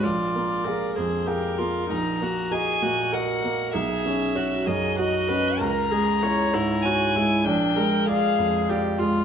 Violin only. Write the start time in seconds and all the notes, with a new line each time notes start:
0.04 D5
0.96 C5
1.27 A#4
1.91 A#5
2.52 G#5
3.14 F#5
3.75 E5
4.67 D#5
4.98 D#5
5.59 A#5
6.82 G#5
7.45 G5
8.06 F5